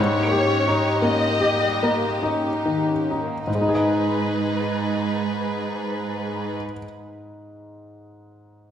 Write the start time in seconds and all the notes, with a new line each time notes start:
Already playing: G#2 G3 G4
0.00 C#5
0.21 A#3
0.31 G4
0.47 C#4
0.68 D#4
0.73 D#4
1.02 A#3 C#4 D#5
1.29 A#3
1.41 G4
1.59 G3
1.83 A#3
1.90 A#3
2.21 C#4 D#4
2.52 D#4
2.65 D#3
2.89 C#4
3.11 D#4
3.21 A#3
3.47 G#2 D#4 G#4 B4
3.55 G#3
3.61 D#4
3.69 G#4
3.75 D#5